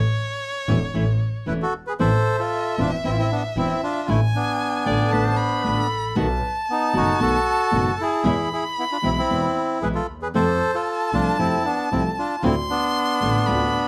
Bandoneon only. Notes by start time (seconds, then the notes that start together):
1.47 E4 B4
1.62 F#4 A4
1.87 G#4 B4
2.00 A4 C5
2.39 F4 A4
2.79 D4 F4
3.05 C4 E4
3.10 F4
3.19 C4 E4
3.32 B3 D4
3.58 C4 E4
3.83 D4 F4
4.09 A3 E4
4.35 B3 D4
6.70 B3 D#4
6.96 D#4 F#4
7.22 F#4 A4
8.01 E4 G#4
8.53 E4 G#4
8.79 B3 E4
8.92 D4 F4
9.04 C4 E4
9.18 C4 E4
9.82 G#4 B4
9.95 F4 A4
10.22 G#4 B4
10.35 A4 C5
10.74 F4 A4
11.14 D4 F4
11.39 C4 E4
11.64 B3 D4
11.92 C4 E4
12.18 D4 F4
12.38 F4
12.44 C4 E4
12.70 B3 D4